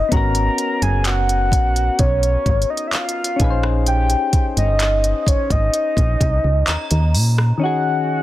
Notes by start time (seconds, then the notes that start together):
Already playing: B4 D#5
0.09 G#1 B3 C#4 A#5, kick, closed hi-hat
0.14 F#4 A#4
0.35 closed hi-hat
0.58 closed hi-hat
0.82 F#1 G#5, closed hi-hat
1.05 F#5, clap, closed hi-hat
1.29 closed hi-hat
1.52 A#1, kick, closed hi-hat
1.76 closed hi-hat
1.99 B1 C#5, kick, closed hi-hat
2.23 closed hi-hat
2.46 G#1, kick, closed hi-hat
2.62 closed hi-hat
2.70 D#5
2.77 closed hi-hat
2.87 E5
2.93 F5, clap, closed hi-hat
3.09 closed hi-hat
3.24 closed hi-hat
3.36 A#1 C#4 D#4, kick, closed hi-hat
3.41 G#4 B4
3.50 C5
3.63 cross-stick
3.86 G5, closed hi-hat
4.10 closed hi-hat
4.33 kick, closed hi-hat
4.57 G1 D#5, closed hi-hat
4.80 clap, closed hi-hat
5.04 closed hi-hat
5.23 G#1 D#5, kick
5.28 C#5, closed hi-hat
5.50 G#1 D#5, kick, closed hi-hat
5.74 closed hi-hat
5.97 A#1, kick, closed hi-hat
6.21 C2, kick, closed hi-hat
6.44 C#2
6.68 D#2 A#5, clap, closed hi-hat
6.91 D#2, closed hi-hat
7.14 A#2, open hi-hat
7.38 cross-stick
7.58 D#3 C#4 D#4
7.63 F#4 G#4 F#5